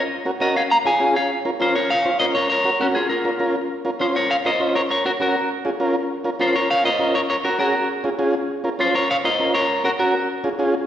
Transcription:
0.25 0.31 C#4 medium
0.25 0.31 F#4 medium
0.25 0.31 A#4 medium
0.40 0.56 C#4 medium
0.40 0.56 F#4 medium
0.40 0.57 A#4 medium
0.40 0.55 A#4 medium
0.40 0.56 D#5 medium
0.56 0.62 C#5 medium
0.56 0.61 F5 medium
0.71 0.77 F5 medium
0.71 0.76 A#5 loud
0.85 0.91 C#4 medium
0.85 0.91 F4 medium
0.85 0.91 G#4 medium
0.85 1.14 F5 medium
0.85 1.14 G#5 loud
1.00 1.16 C#4 medium
1.00 1.16 F4 medium
1.00 1.16 G#4 medium
1.16 1.30 C#5 medium
1.16 1.30 F5 medium
1.45 1.51 C#4 medium
1.45 1.51 F4 medium
1.45 1.51 A#4 medium
1.60 1.76 C#4 medium
1.60 1.76 F4 medium
1.60 1.75 F4 medium
1.60 1.76 A#4 medium
1.60 1.75 C5 medium
1.76 1.90 A#4 medium
1.76 1.89 C#5 loud
1.90 2.19 C#5 medium
1.90 2.19 F5 loud
2.05 2.10 C#4 medium
2.05 2.11 F4 medium
2.05 2.11 C5 medium
2.20 2.36 C#4 medium
2.20 2.36 F4 medium
2.20 2.36 A#4 medium
2.20 2.26 C5 medium
2.20 2.25 D#5 medium
2.35 2.50 A#4 medium
2.35 2.48 C#5 medium
2.50 2.79 A#4 medium
2.50 2.78 C#5 medium
2.64 2.70 C#4 medium
2.64 2.70 F#4 medium
2.64 2.70 A#4 medium
2.80 2.96 C#4 medium
2.80 2.87 C#4 medium
2.80 2.96 F#4 medium
2.80 2.86 F#4 medium
2.80 2.96 A#4 medium
2.95 3.10 F4 medium
2.95 3.09 G#4 medium
3.09 3.52 F4 medium
3.09 3.52 A#4 medium
3.25 3.30 C#4 medium
3.25 3.31 F4 medium
3.25 3.31 A#4 medium
3.39 3.56 C#4 medium
3.39 3.56 F4 medium
3.39 3.56 A#4 medium
3.85 3.90 C#4 medium
3.85 3.90 F4 medium
3.85 3.91 A#4 medium
4.00 4.16 C#4 medium
4.00 4.16 F4 medium
4.00 4.06 F4 medium
4.00 4.16 C5 medium
4.00 4.06 C5 medium
4.16 4.30 A#4 medium
4.16 4.29 C#5 medium
4.30 4.35 C#5 medium
4.30 4.36 F5 medium
4.45 4.50 C#4 medium
4.45 4.50 F4 medium
4.45 4.51 A#4 medium
4.45 4.74 C5 medium
4.45 4.74 D#5 medium
4.60 4.76 C#4 medium
4.60 4.76 F4 medium
4.60 4.76 C5 medium
4.76 4.81 A#4 medium
4.76 4.81 C#5 medium
4.91 5.04 A#4 medium
4.91 5.05 C#5 medium
5.05 5.10 C#4 medium
5.05 5.11 F#4 medium
5.05 5.11 A#4 medium
5.20 5.36 C#4 medium
5.20 5.36 F#4 medium
5.20 5.49 F#4 medium
5.20 5.36 A#4 medium
5.20 5.49 A#4 medium
5.65 5.70 C#4 medium
5.65 5.70 F4 medium
5.65 5.71 G#4 medium
5.80 5.96 C#4 medium
5.80 5.96 F4 medium
5.80 5.96 A#4 medium
6.24 6.30 C#4 medium
6.24 6.30 F4 medium
6.24 6.30 A#4 medium
6.39 6.55 C#4 medium
6.39 6.56 F4 medium
6.39 6.54 F4 medium
6.39 6.56 A#4 medium
6.39 6.54 C5 medium
6.56 6.69 A#4 medium
6.56 6.69 C#5 medium
6.71 6.84 C#5 medium
6.71 6.84 F5 loud
6.84 6.90 C#4 medium
6.84 6.90 F4 medium
6.84 6.90 A#4 medium
6.84 7.13 C5 medium
6.84 7.13 D#5 loud
6.99 7.15 C#4 medium
6.99 7.15 F4 medium
6.99 7.16 A#4 medium
7.15 7.20 A#4 medium
7.15 7.20 C#5 medium
7.30 7.36 A#4 medium
7.30 7.35 C#5 medium
7.44 7.50 C#4 medium
7.44 7.50 F#4 medium
7.44 7.59 F#4 medium
7.44 7.59 A#4 medium
7.44 7.50 A#4 medium
7.59 7.75 C#4 medium
7.59 7.75 F#4 medium
7.59 7.88 F#4 medium
7.59 7.75 G#4 medium
7.59 7.87 A#4 medium
8.04 8.09 C#4 medium
8.04 8.10 F4 medium
8.04 8.10 G#4 medium
8.19 8.35 C#4 medium
8.19 8.35 F4 medium
8.19 8.35 G#4 medium
8.64 8.69 C#4 medium
8.64 8.70 F4 medium
8.64 8.70 A#4 medium
8.79 8.95 C#4 medium
8.79 8.95 F4 medium
8.79 8.94 F4 medium
8.79 8.95 C5 medium
8.79 8.94 C5 medium
8.95 9.09 A#4 medium
8.95 9.09 C#5 medium
9.11 9.16 C#5 medium
9.11 9.16 F5 loud
9.24 9.29 C#4 medium
9.24 9.30 F4 medium
9.24 9.30 A#4 medium
9.24 9.53 C5 medium
9.24 9.53 D#5 medium
9.39 9.55 C#4 medium
9.39 9.55 F4 medium
9.39 9.55 A#4 medium
9.54 9.82 A#4 medium
9.54 9.82 C#5 medium
9.84 9.89 C#4 medium
9.84 9.90 F#4 medium
9.84 9.91 F#4 medium
9.84 9.90 A#4 medium
9.99 10.15 C#4 medium
9.99 10.15 F#4 medium
9.99 10.28 F#4 medium
9.99 10.27 A#4 medium
9.99 10.15 A#4 medium
10.44 10.49 C#4 medium
10.44 10.49 F4 medium
10.44 10.50 G#4 medium
10.59 10.75 C#4 medium
10.59 10.75 F4 medium
10.59 10.75 G#4 medium

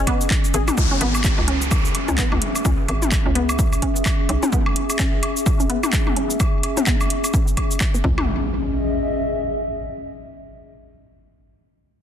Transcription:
0.00 0.76 C#4 medium
0.00 0.77 G#4 medium
0.00 0.80 D#5 loud
0.07 0.10 B3 medium
0.07 kick medium
0.07 closed hi-hat medium
0.07 low woodblock medium
0.21 shaker soft
0.31 kick loud
0.31 clap loud
0.31 low woodblock soft
0.44 shaker soft
0.54 0.70 G#1 loud
0.54 0.59 G#4 medium
0.54 closed hi-hat medium
0.54 shaker medium
0.68 mid tom loud
0.68 low woodblock medium
0.68 shaker soft
0.77 0.86 C#2 loud
0.77 8.03 C#4 medium
0.77 kick loud
0.77 downlifter medium
0.77 low woodblock soft
0.77 shaker medium
0.91 0.93 C#4 medium
1.01 1.30 G#1 loud
1.01 1.09 B3 loud
1.01 closed hi-hat medium
1.09 8.04 G#4 medium
1.15 8.04 E5 medium
1.15 low woodblock medium
1.15 shaker soft
1.24 kick loud
1.24 clap loud
1.24 shaker medium
1.38 1.89 C#2 medium
1.38 low woodblock soft
1.48 1.51 C#4 medium
1.48 closed hi-hat medium
1.62 shaker soft
1.71 kick loud
1.71 low woodblock medium
1.71 shaker medium
1.85 shaker soft
1.95 closed hi-hat medium
1.95 low woodblock soft
2.08 2.22 C#2 medium
2.08 2.11 C#4 medium
2.08 mid tom medium
2.08 shaker soft
2.18 2.26 B3 loud
2.18 kick loud
2.18 clap loud
2.18 shaker medium
2.32 2.38 C#2 medium
2.32 mid tom medium
2.32 low woodblock medium
2.42 closed hi-hat medium
2.55 low woodblock soft
2.55 shaker soft
2.65 2.74 C#2 medium
2.65 2.68 C#4 medium
2.65 kick loud
2.65 shaker medium
2.88 3.18 G#1 loud
2.88 closed hi-hat medium
2.88 low woodblock medium
3.02 mid tom medium
3.02 shaker soft
3.12 kick loud
3.12 clap loud
3.12 low woodblock soft
3.12 shaker medium
3.26 3.76 C#2 medium
3.26 3.28 C#4 medium
3.35 3.43 B3 loud
3.35 closed hi-hat medium
3.49 low woodblock medium
3.49 shaker soft
3.59 kick loud
3.59 shaker medium
3.73 low woodblock soft
3.73 shaker soft
3.82 3.85 C#4 medium
3.82 kick medium
3.82 closed hi-hat loud
3.96 shaker soft
4.06 kick loud
4.06 clap loud
4.06 low woodblock medium
4.06 shaker medium
4.29 4.38 B1 medium
4.29 closed hi-hat medium
4.29 low woodblock soft
4.43 4.45 C#4 medium
4.43 mid tom loud
4.43 shaker soft
4.52 4.60 B3 loud
4.52 kick loud
4.52 shaker soft
4.66 low woodblock medium
4.76 closed hi-hat medium
4.90 low woodblock soft
4.90 shaker soft
4.99 5.02 C#4 medium
4.99 kick loud
4.99 clap medium
4.99 shaker medium
5.23 closed hi-hat medium
5.23 low woodblock medium
5.37 shaker soft
5.46 kick loud
5.46 low woodblock soft
5.46 shaker soft
5.60 5.62 C#4 medium
5.60 shaker soft
5.70 5.77 B3 loud
5.70 closed hi-hat loud
5.83 mid tom medium
5.83 low woodblock medium
5.83 shaker soft
5.93 kick loud
5.93 clap medium
5.93 shaker medium
6.07 mid tom medium
6.07 low woodblock soft
6.16 6.20 C#4 medium
6.16 closed hi-hat medium
6.30 shaker soft
6.40 kick loud
6.40 low woodblock medium
6.40 shaker soft
6.63 closed hi-hat medium
6.63 low woodblock soft
6.77 6.79 C#4 medium
6.77 mid tom medium
6.77 shaker soft
6.87 6.95 B3 medium
6.87 kick loud
6.87 clap medium
6.87 shaker soft
7.01 low woodblock medium
7.01 shaker soft
7.10 closed hi-hat medium
7.24 low woodblock soft
7.24 shaker soft
7.34 7.37 C#4 medium
7.34 kick loud
7.34 shaker soft
7.47 shaker soft
7.57 kick medium
7.57 closed hi-hat medium
7.57 low woodblock medium
7.71 shaker soft
7.81 kick loud
7.81 clap medium
7.81 low woodblock soft
7.81 shaker medium
7.94 7.98 B3 medium
7.94 shaker soft
8.04 8.26 C#2 medium
8.04 8.26 C#4 medium
8.04 9.88 C#4 medium
8.04 kick loud
8.04 impact medium
8.12 9.88 G#4 medium
8.18 mid tom medium
8.18 low woodblock medium
8.43 10.11 D#5 medium
8.49 10.11 E5 medium

